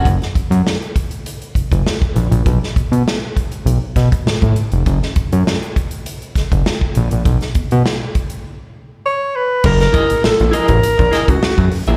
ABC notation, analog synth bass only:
X:1
M:4/4
L:1/16
Q:1/4=100
K:F#mix
V:1 name="Analog synth bass" clef=bass
F,,, z F,, F,, z6 F,,, F,,, z2 A,,, A,,, | B,,, z B,, B,, z4 B,,, z B,, z =A,, A,, z =F,,, | F,,, z F,, F,, z6 F,,, F,,, z2 A,,, A,,, | B,,, z B,, B,, z12 |
F,,,2 z A,,, A,,, A,,, z =A,,, ^A,,, A,,, z C,, z F,, z A,,, |]